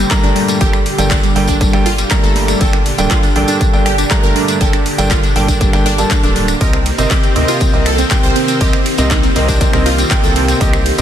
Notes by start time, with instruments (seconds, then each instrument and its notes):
Already playing: supersaw synth A#2 D3 G4
0.11 grand piano G2 A3 A#3 A#5, synth pluck G3, kick, clap, closed hi-hat, tambourine
0.23 analog synth bass G1, synth pluck D4, tambourine
0.36 synth pluck G3, open hi-hat
0.48 synth pluck G3, closed hi-hat, tambourine
0.61 analog synth bass G1, grand piano G2 A#3 A4 G5, synth pluck G4, kick, closed hi-hat, tambourine
0.73 synth pluck G3, finger snap, tambourine
0.86 open hi-hat
0.98 analog synth bass G1, grand piano G2 A#3 A4 G5, synth pluck G3, closed hi-hat, tambourine
1.11 synth pluck D4, kick, clap, closed hi-hat, tambourine
1.23 synth pluck G3, closed hi-hat, tambourine
1.36 analog synth bass G1, grand piano G2 A#3 A4 G5, synth pluck G3, open hi-hat
1.48 synth pluck D4, kick, closed hi-hat, tambourine
1.61 synth pluck G3, kick, closed hi-hat, tambourine
1.73 analog synth bass G1, grand piano G2 A#3 A4 G5, synth pluck G3, finger snap, tambourine
1.86 synth pluck F4, open hi-hat
1.98 synth pluck G3, closed hi-hat, tambourine
2.11 grand piano G2 A3 A#3 A#5, kick, clap, closed hi-hat, tambourine
2.23 analog synth bass G1, synth pluck A4, tambourine
2.36 synth pluck G3, open hi-hat
2.48 synth pluck G3, finger snap, closed hi-hat, tambourine
2.61 analog synth bass G1, grand piano G2 A#3 A4 G5, synth pluck A4, kick, closed hi-hat, tambourine
2.73 synth pluck D4, finger snap, tambourine
2.86 open hi-hat
2.98 analog synth bass D1, grand piano G2 A#3 A4 G5, synth pluck D4, closed hi-hat, tambourine
3.11 synth pluck F4, kick, clap, closed hi-hat, tambourine
3.23 synth pluck D4, closed hi-hat, tambourine
3.36 analog synth bass A1, grand piano G2 A#3 A4 G5, synth pluck D4, open hi-hat
3.48 synth pluck D4, closed hi-hat, tambourine
3.61 synth pluck D4, kick, closed hi-hat, tambourine
3.73 analog synth bass G1, grand piano G2 A#3 A4 G5, synth pluck D4, tambourine
3.86 synth pluck G4, finger snap, open hi-hat
3.98 synth pluck D4, closed hi-hat, tambourine
4.11 grand piano G2 A3 A#3 A#5, synth pluck D4, kick, clap, closed hi-hat, tambourine
4.23 analog synth bass G1, synth pluck A#4, tambourine
4.36 synth pluck D4, open hi-hat
4.48 synth pluck D4, closed hi-hat, tambourine
4.61 analog synth bass G1, grand piano G2 A#3 A4 G5, synth pluck A4, kick, closed hi-hat, tambourine
4.73 synth pluck D4, finger snap, closed hi-hat, tambourine
4.86 open hi-hat
4.98 analog synth bass G1, grand piano G2 A#3 A4 G5, synth pluck D4, closed hi-hat, tambourine
5.10 synth pluck F4, kick, clap, closed hi-hat, tambourine
5.23 synth pluck D4, closed hi-hat, tambourine
5.36 analog synth bass G1, grand piano G2 A#3 A4 G5, synth pluck D4, open hi-hat
5.48 synth pluck D4, kick, closed hi-hat, tambourine
5.61 synth pluck D4, kick, closed hi-hat, tambourine
5.73 analog synth bass G1, grand piano G2 A#3 A4 G5, synth pluck D4, finger snap, tambourine
5.86 synth pluck D4, open hi-hat
5.98 grand piano G2 A#3 A4 A5, synth pluck D4, closed hi-hat, tambourine
6.10 synth pluck D4, kick, clap, closed hi-hat, tambourine
6.23 analog synth bass D1, grand piano G2 A#3 A4 A5, synth pluck D4, closed hi-hat, tambourine
6.36 synth pluck D4, open hi-hat
6.48 synth pluck D4, finger snap, closed hi-hat, tambourine
6.61 analog synth bass C2, grand piano C3 C4 A#4 D#5, supersaw synth D#3 A#3 C4 G4, synth pluck A#4, kick, closed hi-hat, ride, tambourine
6.73 synth pluck C4, finger snap, tambourine
6.86 open hi-hat, ride
6.98 analog synth bass G1, grand piano C3 C4 A#4 D#5, synth pluck C4, closed hi-hat, tambourine
7.11 synth pluck G4, kick, clap, closed hi-hat, ride, tambourine
7.23 synth pluck C4, closed hi-hat, tambourine
7.36 analog synth bass D2, grand piano C3 C4 A#4 D#5, synth pluck C4, open hi-hat, ride
7.48 synth pluck F4, closed hi-hat, tambourine
7.60 synth pluck C4, kick, closed hi-hat, ride, tambourine
7.73 analog synth bass C2, grand piano C3 C4 A#4 D#5, synth pluck C4, tambourine
7.86 synth pluck A4, finger snap, open hi-hat, ride
7.98 synth pluck C4, closed hi-hat, tambourine
8.11 grand piano C3 C4 A#4 G5, kick, clap, closed hi-hat, ride, tambourine
8.23 analog synth bass C2, synth pluck C5, tambourine
8.36 synth pluck C4, open hi-hat, ride
8.48 synth pluck C4, closed hi-hat, tambourine
8.61 analog synth bass C2, grand piano C3 C4 A#4 D#5, synth pluck G4, kick, closed hi-hat, ride, tambourine
8.73 synth pluck C4, finger snap, tambourine
8.86 open hi-hat, ride
8.98 analog synth bass C2, grand piano C3 C4 A#4 D#5, synth pluck C4, closed hi-hat, tambourine
9.11 synth pluck D#4, kick, clap, closed hi-hat, ride, tambourine
9.23 synth pluck C4, closed hi-hat, tambourine
9.36 analog synth bass C2, grand piano C3 C4 A#4 D#5, synth pluck C4, open hi-hat, ride
9.48 synth pluck D4, kick, closed hi-hat, tambourine
9.61 synth pluck C4, kick, closed hi-hat, ride, tambourine
9.73 analog synth bass C2, grand piano C3 C4 A#4 D#5, synth pluck C4, finger snap, tambourine
9.86 synth pluck F4, open hi-hat, ride
9.98 synth pluck C4, closed hi-hat, tambourine
10.11 grand piano C3 C4 A#4 G5, synth pluck C4, kick, clap, closed hi-hat, ride, tambourine
10.23 analog synth bass C2, synth pluck A4, tambourine
10.36 synth pluck C4, open hi-hat, ride
10.48 synth pluck C4, finger snap, closed hi-hat, tambourine
10.61 analog synth bass C2, grand piano C3 C4 A#4 D#5, supersaw synth D3, synth pluck G4, kick, closed hi-hat, ride, tambourine
10.73 synth pluck C4, finger snap, tambourine
10.86 open hi-hat, ride
10.98 analog synth bass G1, grand piano C3 C4 A#4 D#5, synth pluck C4, closed hi-hat, tambourine